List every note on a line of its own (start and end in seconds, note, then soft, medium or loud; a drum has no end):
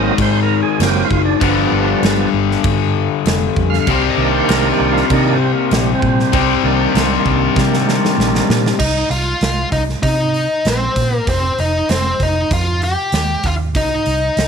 0.00 1.39 G#2 medium
0.00 1.40 D#3 loud
0.00 0.14 F#3 medium
0.00 1.40 G#3 loud
0.00 0.14 A#3 soft
0.00 0.15 C4 medium
0.00 0.18 D#5 medium
0.18 0.61 G#2 medium
0.18 0.40 C5 loud
0.18 kick loud
0.18 crash medium
0.43 0.61 A#4 loud
0.63 0.81 G#4 loud
0.79 1.01 F#1 medium
0.79 1.08 F#3 soft
0.79 1.09 A#3 medium
0.79 1.09 C4 medium
0.79 snare loud
0.79 crash medium
0.85 1.02 G4 medium
1.05 1.22 F4 medium
1.11 1.32 F#1 medium
1.11 kick medium
1.25 1.41 D4 loud
1.40 1.63 G1 medium
1.40 3.85 G2 medium
1.40 3.86 D3 medium
1.40 2.29 F3 medium
1.40 3.89 G3 medium
1.40 2.29 B3 medium
1.40 2.30 D4 medium
1.40 kick loud
1.40 crash medium
1.72 1.93 G1 medium
2.02 2.24 G1 loud
2.02 snare loud
2.02 crash medium
2.33 2.55 G1 loud
2.51 snare soft
2.64 3.07 G2 medium
2.64 kick loud
2.64 crash medium
3.25 3.47 F1 loud
3.25 snare loud
3.25 crash medium
3.56 3.78 F2 loud
3.56 kick medium
3.70 4.08 F5 loud
3.70 snare soft
3.87 4.09 C2 medium
3.87 6.32 C3 medium
3.87 6.34 G3 loud
3.87 6.34 C4 loud
3.87 kick loud
3.87 crash medium
4.10 4.29 D#5 medium
4.17 4.39 C2 loud
4.17 5.06 D#3 medium
4.17 5.06 A#3 soft
4.17 5.06 D4 medium
4.31 4.50 C5 medium
4.49 4.70 C2 loud
4.49 4.69 A#4 medium
4.49 snare loud
4.49 crash medium
4.72 4.90 G4 loud
4.80 5.01 C2 medium
4.92 5.11 F4 loud
4.97 snare soft
5.10 5.53 C3 loud
5.10 5.38 D#3 medium
5.10 5.38 A#3 soft
5.10 5.38 D4 medium
5.10 5.32 D#4 loud
5.10 kick loud
5.10 crash medium
5.34 5.52 C4 loud
5.54 5.72 A#3 medium
5.71 5.93 A#1 loud
5.71 5.92 G3 medium
5.71 snare loud
5.71 crash medium
5.95 7.13 C4 loud
6.02 6.24 A#2 medium
6.02 kick medium
6.20 snare soft
6.33 6.55 C2 medium
6.33 8.78 C3 medium
6.33 8.78 G3 medium
6.33 8.79 C4 loud
6.33 kick loud
6.33 crash medium
6.63 6.85 C2 medium
6.63 8.75 D#3 medium
6.63 8.76 A#3 medium
6.63 8.76 D4 medium
6.94 7.16 C2 loud
6.94 snare loud
6.94 crash medium
7.25 7.47 C2 medium
7.25 kick medium
7.56 7.99 C3 loud
7.56 kick loud
7.56 snare medium
7.74 snare medium
7.89 snare medium
8.05 snare medium
8.18 8.40 A#1 loud
8.18 snare medium
8.35 snare medium
8.49 8.71 A#2 loud
8.49 snare loud
8.66 snare loud
8.79 9.02 C2 medium
8.79 9.10 D#4 medium
8.79 kick loud
8.79 crash loud
9.10 9.32 C2 medium
9.10 9.68 F4 medium
9.10 open hi-hat medium
9.41 9.63 C2 medium
9.41 snare loud
9.41 open hi-hat medium
9.72 9.94 C2 medium
9.72 9.81 D#4 medium
9.72 kick medium
9.72 open hi-hat medium
9.89 snare soft
10.03 10.46 C3 medium
10.03 10.67 D#4 loud
10.03 kick loud
10.03 open hi-hat medium
10.34 open hi-hat medium
10.65 10.87 A#1 medium
10.65 11.16 C4 medium
10.65 snare loud
10.65 open hi-hat medium
10.96 11.18 A#2 medium
10.96 kick medium
10.96 open hi-hat medium
11.16 11.28 A#3 medium
11.27 11.49 F1 medium
11.27 11.57 C4 medium
11.27 kick loud
11.27 open hi-hat medium
11.58 11.80 F1 medium
11.58 11.88 D#4 medium
11.58 open hi-hat medium
11.89 12.11 F1 medium
11.89 12.21 C4 medium
11.89 snare loud
11.89 open hi-hat medium
12.20 12.42 F1 medium
12.20 12.53 D#4 medium
12.20 kick medium
12.20 open hi-hat medium
12.51 12.94 F2 medium
12.51 12.81 F4 loud
12.51 kick loud
12.51 open hi-hat medium
12.82 13.47 G4 loud
12.82 open hi-hat medium
13.12 13.34 D#2 loud
13.12 snare loud
13.12 open hi-hat medium
13.43 13.75 D#2 medium
13.43 13.54 F4 medium
13.43 kick medium
13.43 open hi-hat medium
13.75 13.97 C2 medium
13.75 14.48 D#4 medium
13.75 kick loud
13.75 open hi-hat medium
14.06 14.28 C2 medium
14.06 open hi-hat medium
14.37 14.48 C2 loud
14.37 snare loud
14.37 open hi-hat medium